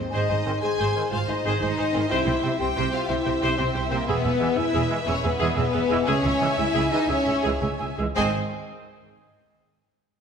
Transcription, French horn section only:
0, 0, Header, 1, 2, 480
1, 0, Start_track
1, 0, Tempo, 330943
1, 180, Time_signature, 12, 3, 24, 8
1, 9297, Tempo, 343643
1, 10737, Tempo, 355661
1, 14467, End_track
2, 0, Start_track
2, 0, Title_t, "French horn section"
2, 0, Program_c, 0, 60
2, 0, Note_on_c, 0, 60, 99
2, 183, Note_off_c, 0, 60, 0
2, 192, Note_on_c, 0, 63, 124
2, 897, Note_on_c, 0, 68, 112
2, 910, Note_off_c, 0, 63, 0
2, 1608, Note_off_c, 0, 68, 0
2, 1620, Note_on_c, 0, 65, 105
2, 1729, Note_off_c, 0, 65, 0
2, 1853, Note_on_c, 0, 63, 102
2, 2307, Note_off_c, 0, 63, 0
2, 2324, Note_on_c, 0, 63, 119
2, 3032, Note_on_c, 0, 64, 117
2, 3036, Note_off_c, 0, 63, 0
2, 3747, Note_off_c, 0, 64, 0
2, 3755, Note_on_c, 0, 67, 102
2, 4232, Note_off_c, 0, 67, 0
2, 4251, Note_on_c, 0, 65, 117
2, 4471, Note_on_c, 0, 64, 108
2, 4485, Note_off_c, 0, 65, 0
2, 5180, Note_off_c, 0, 64, 0
2, 5183, Note_on_c, 0, 60, 127
2, 5666, Note_on_c, 0, 58, 111
2, 5670, Note_off_c, 0, 60, 0
2, 5898, Note_on_c, 0, 59, 126
2, 5908, Note_off_c, 0, 58, 0
2, 6629, Note_off_c, 0, 59, 0
2, 6634, Note_on_c, 0, 64, 127
2, 7147, Note_off_c, 0, 64, 0
2, 7363, Note_on_c, 0, 61, 115
2, 7470, Note_off_c, 0, 61, 0
2, 7623, Note_on_c, 0, 59, 116
2, 8072, Note_off_c, 0, 59, 0
2, 8089, Note_on_c, 0, 59, 127
2, 8799, Note_off_c, 0, 59, 0
2, 8802, Note_on_c, 0, 61, 127
2, 9518, Note_off_c, 0, 61, 0
2, 9528, Note_on_c, 0, 64, 127
2, 9998, Note_on_c, 0, 63, 127
2, 10007, Note_off_c, 0, 64, 0
2, 10240, Note_off_c, 0, 63, 0
2, 10254, Note_on_c, 0, 61, 127
2, 10978, Note_off_c, 0, 61, 0
2, 11705, Note_on_c, 0, 60, 112
2, 11906, Note_off_c, 0, 60, 0
2, 14467, End_track
0, 0, End_of_file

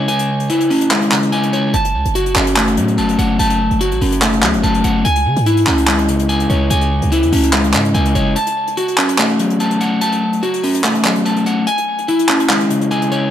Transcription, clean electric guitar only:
0, 0, Header, 1, 2, 480
1, 0, Start_track
1, 0, Key_signature, 3, "minor"
1, 0, Tempo, 413793
1, 95, Time_signature, 4, 2, 24, 8
1, 15434, End_track
2, 0, Start_track
2, 0, Title_t, "Clean electric guitar"
2, 0, Program_c, 0, 27
2, 0, Note_on_c, 0, 49, 74
2, 0, Note_on_c, 0, 56, 85
2, 0, Note_on_c, 0, 61, 81
2, 0, Note_on_c, 0, 73, 85
2, 95, Note_on_c, 0, 80, 99
2, 336, Note_off_c, 0, 61, 0
2, 576, Note_off_c, 0, 56, 0
2, 576, Note_on_c, 0, 64, 93
2, 816, Note_off_c, 0, 49, 0
2, 816, Note_on_c, 0, 61, 85
2, 1055, Note_on_c, 0, 56, 98
2, 1295, Note_off_c, 0, 73, 0
2, 1295, Note_on_c, 0, 49, 75
2, 1521, Note_off_c, 0, 80, 0
2, 1535, Note_on_c, 0, 80, 102
2, 1775, Note_on_c, 0, 73, 87
2, 2010, Note_off_c, 0, 80, 0
2, 2015, Note_off_c, 0, 56, 0
2, 2015, Note_off_c, 0, 73, 0
2, 2015, Note_on_c, 0, 81, 95
2, 2016, Note_off_c, 0, 49, 0
2, 2016, Note_off_c, 0, 61, 0
2, 2016, Note_off_c, 0, 64, 0
2, 2495, Note_on_c, 0, 66, 99
2, 2736, Note_on_c, 0, 61, 76
2, 2975, Note_on_c, 0, 57, 94
2, 3216, Note_on_c, 0, 54, 80
2, 3442, Note_off_c, 0, 81, 0
2, 3456, Note_on_c, 0, 81, 91
2, 3695, Note_on_c, 0, 78, 84
2, 3922, Note_off_c, 0, 81, 0
2, 3935, Note_off_c, 0, 66, 0
2, 3936, Note_on_c, 0, 81, 110
2, 4176, Note_off_c, 0, 61, 0
2, 4415, Note_off_c, 0, 57, 0
2, 4416, Note_on_c, 0, 66, 92
2, 4656, Note_off_c, 0, 54, 0
2, 4656, Note_on_c, 0, 61, 78
2, 4896, Note_on_c, 0, 57, 88
2, 5135, Note_off_c, 0, 78, 0
2, 5136, Note_on_c, 0, 54, 77
2, 5362, Note_off_c, 0, 81, 0
2, 5376, Note_on_c, 0, 81, 98
2, 5615, Note_on_c, 0, 78, 90
2, 5851, Note_off_c, 0, 81, 0
2, 5855, Note_off_c, 0, 57, 0
2, 5855, Note_off_c, 0, 78, 0
2, 5856, Note_off_c, 0, 54, 0
2, 5856, Note_off_c, 0, 61, 0
2, 5856, Note_off_c, 0, 66, 0
2, 5856, Note_on_c, 0, 80, 103
2, 6336, Note_on_c, 0, 64, 97
2, 6576, Note_on_c, 0, 61, 82
2, 6816, Note_on_c, 0, 56, 90
2, 7056, Note_on_c, 0, 49, 73
2, 7283, Note_off_c, 0, 80, 0
2, 7297, Note_on_c, 0, 80, 93
2, 7535, Note_on_c, 0, 73, 89
2, 7762, Note_off_c, 0, 80, 0
2, 7775, Note_off_c, 0, 64, 0
2, 7776, Note_on_c, 0, 80, 102
2, 8016, Note_off_c, 0, 61, 0
2, 8256, Note_off_c, 0, 56, 0
2, 8256, Note_on_c, 0, 64, 95
2, 8496, Note_off_c, 0, 49, 0
2, 8496, Note_on_c, 0, 61, 88
2, 8736, Note_on_c, 0, 56, 96
2, 8976, Note_off_c, 0, 73, 0
2, 8976, Note_on_c, 0, 49, 77
2, 9202, Note_off_c, 0, 80, 0
2, 9216, Note_on_c, 0, 80, 102
2, 9456, Note_on_c, 0, 73, 85
2, 9691, Note_off_c, 0, 80, 0
2, 9696, Note_off_c, 0, 49, 0
2, 9696, Note_off_c, 0, 56, 0
2, 9696, Note_off_c, 0, 61, 0
2, 9696, Note_off_c, 0, 64, 0
2, 9696, Note_off_c, 0, 73, 0
2, 9696, Note_on_c, 0, 81, 99
2, 10176, Note_on_c, 0, 66, 98
2, 10416, Note_on_c, 0, 61, 76
2, 10655, Note_on_c, 0, 57, 93
2, 10896, Note_on_c, 0, 54, 80
2, 11122, Note_off_c, 0, 81, 0
2, 11136, Note_on_c, 0, 81, 92
2, 11376, Note_on_c, 0, 78, 86
2, 11602, Note_off_c, 0, 81, 0
2, 11616, Note_off_c, 0, 66, 0
2, 11616, Note_on_c, 0, 81, 105
2, 11856, Note_off_c, 0, 61, 0
2, 12095, Note_off_c, 0, 57, 0
2, 12095, Note_on_c, 0, 66, 92
2, 12336, Note_off_c, 0, 54, 0
2, 12336, Note_on_c, 0, 61, 81
2, 12576, Note_on_c, 0, 57, 89
2, 12816, Note_off_c, 0, 78, 0
2, 12816, Note_on_c, 0, 54, 79
2, 13041, Note_off_c, 0, 81, 0
2, 13055, Note_on_c, 0, 81, 97
2, 13295, Note_on_c, 0, 78, 87
2, 13531, Note_off_c, 0, 81, 0
2, 13535, Note_off_c, 0, 57, 0
2, 13535, Note_off_c, 0, 66, 0
2, 13535, Note_off_c, 0, 78, 0
2, 13536, Note_off_c, 0, 54, 0
2, 13536, Note_off_c, 0, 61, 0
2, 13536, Note_on_c, 0, 80, 100
2, 14015, Note_on_c, 0, 64, 95
2, 14255, Note_on_c, 0, 61, 84
2, 14495, Note_on_c, 0, 56, 89
2, 14735, Note_on_c, 0, 49, 75
2, 14962, Note_off_c, 0, 80, 0
2, 14976, Note_on_c, 0, 80, 95
2, 15215, Note_on_c, 0, 73, 89
2, 15434, Note_off_c, 0, 49, 0
2, 15434, Note_off_c, 0, 56, 0
2, 15434, Note_off_c, 0, 61, 0
2, 15434, Note_off_c, 0, 64, 0
2, 15434, Note_off_c, 0, 73, 0
2, 15434, Note_off_c, 0, 80, 0
2, 15434, End_track
0, 0, End_of_file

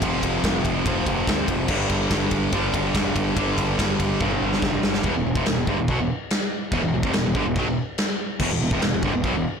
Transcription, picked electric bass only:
0, 0, Header, 1, 2, 480
1, 0, Start_track
1, 0, Tempo, 419287
1, 22, Time_signature, 4, 2, 24, 8
1, 10990, End_track
2, 0, Start_track
2, 0, Title_t, "Picked electric bass"
2, 0, Program_c, 0, 34
2, 19, Note_on_c, 0, 29, 91
2, 199, Note_off_c, 0, 29, 0
2, 257, Note_on_c, 0, 29, 91
2, 437, Note_off_c, 0, 29, 0
2, 501, Note_on_c, 0, 29, 91
2, 680, Note_off_c, 0, 29, 0
2, 739, Note_on_c, 0, 29, 84
2, 918, Note_off_c, 0, 29, 0
2, 978, Note_on_c, 0, 29, 100
2, 1158, Note_off_c, 0, 29, 0
2, 1221, Note_on_c, 0, 29, 104
2, 1399, Note_off_c, 0, 29, 0
2, 1461, Note_on_c, 0, 38, 96
2, 1639, Note_off_c, 0, 38, 0
2, 1694, Note_on_c, 0, 29, 100
2, 1875, Note_off_c, 0, 29, 0
2, 1930, Note_on_c, 0, 31, 95
2, 2112, Note_off_c, 0, 31, 0
2, 2175, Note_on_c, 0, 31, 83
2, 2355, Note_off_c, 0, 31, 0
2, 2410, Note_on_c, 0, 31, 90
2, 2592, Note_off_c, 0, 31, 0
2, 2648, Note_on_c, 0, 31, 90
2, 2830, Note_off_c, 0, 31, 0
2, 2893, Note_on_c, 0, 31, 94
2, 3073, Note_off_c, 0, 31, 0
2, 3136, Note_on_c, 0, 31, 103
2, 3315, Note_off_c, 0, 31, 0
2, 3370, Note_on_c, 0, 29, 98
2, 3552, Note_off_c, 0, 29, 0
2, 3614, Note_on_c, 0, 31, 104
2, 3794, Note_off_c, 0, 31, 0
2, 3851, Note_on_c, 0, 31, 97
2, 4032, Note_off_c, 0, 31, 0
2, 4098, Note_on_c, 0, 31, 87
2, 4276, Note_off_c, 0, 31, 0
2, 4336, Note_on_c, 0, 31, 86
2, 4515, Note_off_c, 0, 31, 0
2, 4577, Note_on_c, 0, 31, 94
2, 4755, Note_off_c, 0, 31, 0
2, 4817, Note_on_c, 0, 31, 91
2, 4996, Note_off_c, 0, 31, 0
2, 5056, Note_on_c, 0, 31, 101
2, 5235, Note_off_c, 0, 31, 0
2, 5295, Note_on_c, 0, 29, 95
2, 5474, Note_off_c, 0, 29, 0
2, 5530, Note_on_c, 0, 31, 89
2, 5711, Note_off_c, 0, 31, 0
2, 5768, Note_on_c, 0, 28, 91
2, 5882, Note_off_c, 0, 28, 0
2, 5897, Note_on_c, 0, 28, 77
2, 6003, Note_off_c, 0, 28, 0
2, 6009, Note_on_c, 0, 28, 73
2, 6118, Note_off_c, 0, 28, 0
2, 6125, Note_on_c, 0, 29, 99
2, 6241, Note_off_c, 0, 29, 0
2, 6256, Note_on_c, 0, 28, 78
2, 6367, Note_off_c, 0, 28, 0
2, 6377, Note_on_c, 0, 28, 80
2, 6487, Note_off_c, 0, 28, 0
2, 6492, Note_on_c, 0, 31, 91
2, 6605, Note_off_c, 0, 31, 0
2, 6619, Note_on_c, 0, 28, 71
2, 6728, Note_off_c, 0, 28, 0
2, 6734, Note_on_c, 0, 35, 107
2, 6846, Note_off_c, 0, 35, 0
2, 6852, Note_on_c, 0, 28, 78
2, 6965, Note_off_c, 0, 28, 0
2, 7692, Note_on_c, 0, 28, 92
2, 7805, Note_off_c, 0, 28, 0
2, 7811, Note_on_c, 0, 28, 85
2, 7925, Note_off_c, 0, 28, 0
2, 7945, Note_on_c, 0, 28, 84
2, 8045, Note_off_c, 0, 28, 0
2, 8176, Note_on_c, 0, 28, 81
2, 8287, Note_off_c, 0, 28, 0
2, 8299, Note_on_c, 0, 28, 90
2, 8409, Note_off_c, 0, 28, 0
2, 8417, Note_on_c, 0, 31, 91
2, 8528, Note_off_c, 0, 31, 0
2, 8536, Note_on_c, 0, 28, 77
2, 8647, Note_off_c, 0, 28, 0
2, 8656, Note_on_c, 0, 35, 103
2, 8767, Note_off_c, 0, 35, 0
2, 8778, Note_on_c, 0, 28, 80
2, 8889, Note_off_c, 0, 28, 0
2, 9615, Note_on_c, 0, 28, 90
2, 9728, Note_off_c, 0, 28, 0
2, 9737, Note_on_c, 0, 28, 81
2, 9849, Note_off_c, 0, 28, 0
2, 9855, Note_on_c, 0, 28, 87
2, 9961, Note_off_c, 0, 28, 0
2, 9968, Note_on_c, 0, 29, 102
2, 10084, Note_off_c, 0, 29, 0
2, 10106, Note_on_c, 0, 28, 80
2, 10214, Note_off_c, 0, 28, 0
2, 10231, Note_on_c, 0, 28, 83
2, 10330, Note_off_c, 0, 28, 0
2, 10337, Note_on_c, 0, 31, 93
2, 10449, Note_off_c, 0, 31, 0
2, 10459, Note_on_c, 0, 28, 81
2, 10568, Note_off_c, 0, 28, 0
2, 10575, Note_on_c, 0, 35, 110
2, 10686, Note_off_c, 0, 35, 0
2, 10693, Note_on_c, 0, 28, 86
2, 10808, Note_off_c, 0, 28, 0
2, 10990, End_track
0, 0, End_of_file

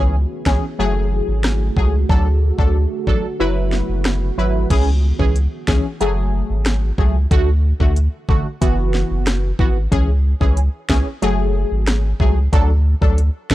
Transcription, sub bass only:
0, 0, Header, 1, 2, 480
1, 0, Start_track
1, 0, Tempo, 652174
1, 1541, Time_signature, 4, 2, 24, 8
1, 9971, End_track
2, 0, Start_track
2, 0, Title_t, "Sub bass"
2, 0, Program_c, 0, 38
2, 0, Note_on_c, 0, 37, 93
2, 187, Note_off_c, 0, 37, 0
2, 339, Note_on_c, 0, 37, 91
2, 443, Note_off_c, 0, 37, 0
2, 580, Note_on_c, 0, 30, 116
2, 890, Note_off_c, 0, 30, 0
2, 940, Note_on_c, 0, 32, 94
2, 1250, Note_off_c, 0, 32, 0
2, 1299, Note_on_c, 0, 37, 88
2, 1506, Note_off_c, 0, 37, 0
2, 1541, Note_on_c, 0, 38, 110
2, 1850, Note_off_c, 0, 38, 0
2, 1903, Note_on_c, 0, 38, 96
2, 2108, Note_off_c, 0, 38, 0
2, 2260, Note_on_c, 0, 33, 91
2, 2363, Note_off_c, 0, 33, 0
2, 2501, Note_on_c, 0, 30, 112
2, 2810, Note_off_c, 0, 30, 0
2, 2861, Note_on_c, 0, 30, 84
2, 3170, Note_off_c, 0, 30, 0
2, 3220, Note_on_c, 0, 32, 92
2, 3426, Note_off_c, 0, 32, 0
2, 3462, Note_on_c, 0, 37, 108
2, 3770, Note_off_c, 0, 37, 0
2, 3823, Note_on_c, 0, 37, 92
2, 4028, Note_off_c, 0, 37, 0
2, 4180, Note_on_c, 0, 37, 85
2, 4284, Note_off_c, 0, 37, 0
2, 4422, Note_on_c, 0, 30, 115
2, 4731, Note_off_c, 0, 30, 0
2, 4782, Note_on_c, 0, 32, 90
2, 5091, Note_off_c, 0, 32, 0
2, 5139, Note_on_c, 0, 37, 90
2, 5346, Note_off_c, 0, 37, 0
2, 5381, Note_on_c, 0, 38, 109
2, 5690, Note_off_c, 0, 38, 0
2, 5742, Note_on_c, 0, 38, 98
2, 5948, Note_off_c, 0, 38, 0
2, 6100, Note_on_c, 0, 33, 94
2, 6204, Note_off_c, 0, 33, 0
2, 6342, Note_on_c, 0, 30, 113
2, 6651, Note_off_c, 0, 30, 0
2, 6702, Note_on_c, 0, 30, 87
2, 7011, Note_off_c, 0, 30, 0
2, 7059, Note_on_c, 0, 32, 86
2, 7266, Note_off_c, 0, 32, 0
2, 7301, Note_on_c, 0, 37, 109
2, 7610, Note_off_c, 0, 37, 0
2, 7662, Note_on_c, 0, 37, 94
2, 7867, Note_off_c, 0, 37, 0
2, 8019, Note_on_c, 0, 37, 88
2, 8123, Note_off_c, 0, 37, 0
2, 8262, Note_on_c, 0, 30, 119
2, 8570, Note_off_c, 0, 30, 0
2, 8622, Note_on_c, 0, 32, 93
2, 8930, Note_off_c, 0, 32, 0
2, 8978, Note_on_c, 0, 37, 86
2, 9185, Note_off_c, 0, 37, 0
2, 9220, Note_on_c, 0, 38, 113
2, 9530, Note_off_c, 0, 38, 0
2, 9582, Note_on_c, 0, 38, 96
2, 9787, Note_off_c, 0, 38, 0
2, 9939, Note_on_c, 0, 33, 93
2, 9971, Note_off_c, 0, 33, 0
2, 9971, End_track
0, 0, End_of_file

